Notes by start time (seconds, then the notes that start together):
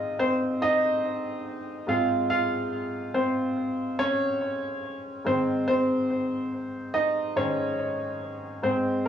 Already playing: G#2 D#3 C4 D#4 F4 D#5 F5
0.19 C4 C5
0.62 D#4 D#5
1.87 G#2 G#3 C4 F4 F5
2.30 F4 F5
3.14 C4 C5
3.99 C#4 C#5
5.25 G#2 D#3 C4 C5
5.68 C4 C5
6.94 D#4 D#5
7.36 G#2 D#3 C#4 C5 C#5
8.63 G#2 G#3 C4 C5